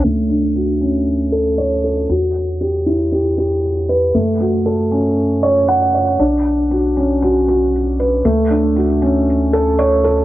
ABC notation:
X:1
M:4/4
L:1/8
Q:1/4=117
K:D
V:1 name="Felt piano"
A, D F C z A c A | F z G E G G z B | A, F A C z c f c | D z F C F F z B |
A, D F C z A c A |]
V:2 name="Analog synth bass" clef=bass
D,,8 | E,,8 | F,,8 | B,,,8 |
D,,8 |]